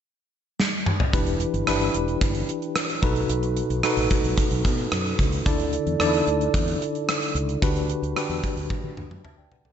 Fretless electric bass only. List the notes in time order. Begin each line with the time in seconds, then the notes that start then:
1.13 E1
1.54 G1
1.68 G1
1.94 E1
2.21 G1
3.02 B1
3.30 B1
3.70 B1
3.97 A1
4.24 B1
4.51 B1
4.65 B2
4.92 F#2
5.19 C#2
5.46 D2
5.86 E2
6.00 E2
6.27 D2
6.54 E2
7.35 C#2
7.62 D2
8.02 D2
8.29 E2
8.57 D2
8.84 D3
8.97 D2
9.11 F#2
9.38 D2
9.52 C2
9.65 C#2